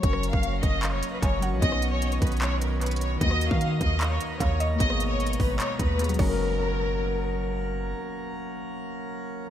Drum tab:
CC |------------------------------------------------------------------------------------------------|------------------------------------------------------------------------------------------------|------------------------------------------------------------------------------------------------|------------------------------------------------------------------------------------x-----------|
HH |x-----------x-----------x-----------x-----------x-----------x-----------x-----------x-----------|x-----------x-----------x-----x-----x--x--x--x--x-----------x-----------x--x--x--x--x-----------|x-----------x-----------x-----------x-----------x-----------x-----------x-----------x-----------|x-----------x-----------x---x---x---o-----------x-----------x-----------x--x--x--x--------------|
CP |------------------------------------------------x-----------------------------------------------|------------------------------------------------x-----------------------------------------------|------------------------------------------------x-----------------------------------------------|------------------------------------------------x-----------------------------------------------|
SD |------r-----------------------------------------------------------------------------------------|------r-----------------------------------------------------------------------------------------|------r-----------------------------------------------------------------------------------------|------r-----------------------------------------------------------------------------------------|
BD |o-----------------o-----------------o-----------------------------------o-----------------------|o-----------------------------------o-----------------------------------------------------------|o-----------------o-----------------o-----------------------------------o-----------------------|o-----------------------------------o-----------------------o-----------------------o-----------|

CC |------------------------------------------------------------------------------------------------|------------------------------------------------------------------------------------------------|
HH |------------------------------------------------------------------------------------------------|------------------------------------------------------------------------------------------------|
CP |------------------------------------------------------------------------------------------------|------------------------------------------------------------------------------------------------|
SD |------------------------------------------------------------------------------------------------|------------------------------------------------------------------------------------------------|
BD |------------------------------------------------------------------------------------------------|------------------------------------------------------------------------------------------------|